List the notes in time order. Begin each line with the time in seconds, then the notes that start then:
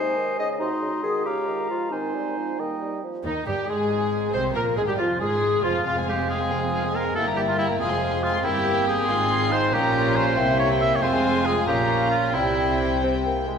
Already playing: C3 G#3 D#4 C5 D#5 G#5
0.16 D#3
0.39 C#3 D#5
0.59 C3 D#4 F#4 D#5 C6
0.82 C#3
1.03 D#3 G#4
1.26 C#3 F4 G4 F5 A#5
1.49 D#3
1.70 F3 F4
1.91 D#3 C4 D#4 C5 G#5
2.15 G3
2.37 F3
2.57 D#3 G3 A#3 D#5 G5
2.80 G3
3.03 F3
3.23 D#2 D#3 D#4
3.46 G1 G2 G3 G4
3.66 G#1 G#2 G#3 G#4
4.33 C2 C3 C4 C5
4.54 A#1 A#2 A#3 A#4
4.76 G#1 G#2 G#3 G#4
4.87 G2 G3 G4
4.91 G3
4.97 F1 F2 F3 F4
5.01 F4
5.19 G#1 G#2 G#3 G#4
5.23 G#3
5.62 F1 F2 F3 F4
5.84 F1 F2 G#3 C4 F4 F5
5.88 G#3
5.95 C4 G#4 G#5
6.06 G#3 F4 G4 F5
6.16 C4 G#4 G#5
6.28 G#3 F4 G#4 F5
6.39 C4 G#4 G#5
6.49 F1 F2 G#3 F4 F5
6.61 C4 G#4 G#5
6.71 G#3 F4 F5
6.82 C4 G#4 G#5
6.94 G#3 F4 A#4 F5
7.04 C4 G#4 G#5
7.13 G1 G2 G3 A#3 E4 A4 E5 G5
7.25 A#3 G4 A#5
7.36 G3 E4 G4 G5
7.46 A#3 F4 G4 A#5
7.57 G3 E4 G5
7.67 A#3 G4 A#5
7.79 F1 F2 F3 G#3 C4 F4 G#4 F5 G#5
7.91 G#3 G#4 C6
8.00 F3 F4 G#5
8.12 G#3 G#4 C6
8.21 F3 F4 G#5
8.33 G#3 G#4 C6
8.44 G1 G2 A#3 C4 E4 G4 G5
8.87 G#4
9.08 G#1 G#2 G#3 C4 F4 F5 C6
9.30 C4
9.51 D#4 C5
9.72 A#1 A#2 A#3 C#4 F4 G4 G5 A#5
10.05 F5
10.16 C5
10.37 C2 C3 A#3 C4 E4 E5 G5
10.59 C#5
10.81 E5
10.95 C#5
11.01 F1 F2 G#3 C4 F4 C5 F5 G#5
11.45 G#4
11.67 A#1 A#2 A#3 C#4 F4 G4 F5 A#5
12.11 F4
12.34 C2 C3 G3 C4 E4 G4 G5
13.04 C4
13.26 A#3
13.48 G#3